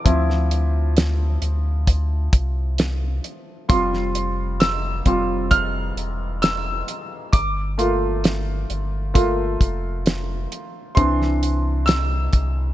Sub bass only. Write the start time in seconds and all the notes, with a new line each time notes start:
0.05 D2
1.42 D2
2.33 C2
3.70 F1
5.05 F1
5.96 E1
7.33 G1
8.70 G1
9.60 F1
10.97 C2
12.34 C2